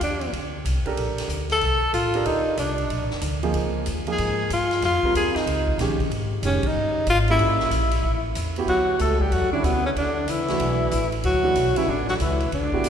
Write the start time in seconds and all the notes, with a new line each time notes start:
0.01 D#2 D4, hi-hat pedal, ride
0.21 ride
0.32 D2, ride
0.65 C2, hi-hat pedal, ride
0.85 D4 G4 A4 A#4, muted upright bass stroke, kick, ride
0.97 A#1, ride
1.17 muted upright bass stroke, snare, ride
1.28 D2, hi-hat pedal
1.49 A4, snare, ride
1.61 C2, ride
1.82 muted upright bass stroke
1.93 A1 F4, hi-hat pedal, ride
2.14 D4 G4 A4 A#4, ride
2.25 D2 D#4, ride
2.45 muted upright bass stroke
2.57 C2 D4, hi-hat pedal, ride
2.78 ride
2.90 A#1, ride
3.01 A1
3.10 snare
3.21 D2, hi-hat pedal, ride
3.43 F3 A#3 D#4 G#4, ride
3.54 C#2, ride
3.86 D#2, hi-hat pedal, ride
4.07 F3 A#3 D#4 G#4, ride
4.12 G#4
4.18 G#2, ride
4.50 G2 F4, hi-hat pedal, ride
4.71 snare, ride
4.82 F2 F4, snare, ride
5.03 G3 C4 F4 A#4, muted upright bass stroke, kick
5.14 D#2 G#4, hi-hat pedal, ride
5.35 D#4, muted upright bass stroke, snare, ride
5.46 C#2, ride
5.67 kick
5.78 A#1 D#3 G#3 C#4 G4, snare, hi-hat pedal, ride
6.00 muted upright bass stroke, kick, ride
6.10 G#1, ride
6.43 F1 D#3 G#3 C#4 G4, hi-hat pedal, ride
6.63 muted upright bass stroke, kick, ride
6.68 D#4
6.74 G1
7.07 G#1 F4, hi-hat pedal, ride
7.28 G3 A#3 C#4 E4, ride
7.39 A1, ride
7.60 snare
7.70 A#1, hi-hat pedal, ride
7.91 ride
8.03 A1
8.35 E2, hi-hat pedal, ride
8.56 B3 E4 F#4 G4, ride
8.67 D2 F#3 F#4, ride
8.99 C#2 A3 A4, hi-hat pedal, ride
9.20 G3 G4, kick
9.32 E2 F#3 F#4, ride
9.52 D3 G3 C#4 D4 E4, muted upright bass stroke
9.63 D2 B2 B3, hi-hat pedal, ride
9.84 C#3 C#4
9.95 D2 D3 D4, ride
10.27 C#2 E3 E4, hi-hat pedal, ride
10.48 E3 A3 D4 F#4, snare, ride
10.59 B1, ride
10.91 A1, hi-hat pedal, ride
11.12 ride
11.23 D2 F#3 F#4, ride
11.43 E3 A3 D4 F#4
11.55 B1, hi-hat pedal, ride
11.76 D3 E3 G3 C#4 E4, muted upright bass stroke, ride
11.87 A1 D3 D4
12.08 F#3 F#4, snare
12.19 C#2 E3 E4, hi-hat pedal, ride
12.40 ride
12.52 D2 D3 D4, ride
12.63 C#2
12.72 A1 B3 E4 F#4 G4, kick
12.84 E2, hi-hat pedal, ride